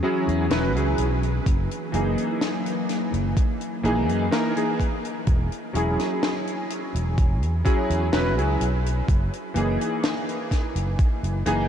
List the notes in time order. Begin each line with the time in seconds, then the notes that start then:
Already playing: E3 C#4 F#4 G#4
0.03 F#3 C#4 E4 G#4
0.28 E2, closed hi-hat
0.50 E1 F#3 C#4 E4 B4, snare, closed hi-hat
0.75 C#2 F#3 C#4 E4 G#4, closed hi-hat
0.98 B1, closed hi-hat
1.23 closed hi-hat
1.46 F#1 F#3 A#3, kick, closed hi-hat
1.71 closed hi-hat
1.92 F#1 E3 A#3 D#4 G#4, closed hi-hat
2.18 closed hi-hat
2.41 snare, closed hi-hat
2.66 closed hi-hat
2.89 snare, closed hi-hat
3.14 F#1, closed hi-hat
3.37 kick, closed hi-hat
3.61 closed hi-hat
3.83 A#1 E3 A#3 D#4 G#4, closed hi-hat
4.09 F#2, closed hi-hat
4.31 E3 A#3 D#4 A#4, snare, closed hi-hat
4.56 E3 A#3 D#4 G#4, closed hi-hat
4.80 kick, closed hi-hat
5.05 closed hi-hat
5.27 E1, kick, closed hi-hat
5.52 closed hi-hat
5.73 E1 F#3 C#4 E4 G#4, closed hi-hat
5.99 snare, closed hi-hat
6.23 snare, closed hi-hat
6.47 closed hi-hat
6.70 closed hi-hat
6.95 E1, closed hi-hat
7.18 kick, closed hi-hat
7.42 E2, closed hi-hat
7.64 F#3 C#4 E4 G#4, kick, closed hi-hat
7.90 E2, closed hi-hat
8.12 E1 F#3 C#4 E4 B4, snare, closed hi-hat
8.37 C#2 F#3 C#4 E4 G#4, closed hi-hat
8.61 B1, closed hi-hat
8.86 closed hi-hat
9.08 F#1, kick, closed hi-hat
9.33 closed hi-hat
9.54 F#1 E3 A#3 D#4 G#4, closed hi-hat
9.81 closed hi-hat
10.03 snare, closed hi-hat
10.29 closed hi-hat
10.51 kick, snare, closed hi-hat
10.76 F#1, closed hi-hat
10.99 kick, closed hi-hat
11.23 F#1, closed hi-hat
11.46 F#1 E3 A#3 D#4 G#4, closed hi-hat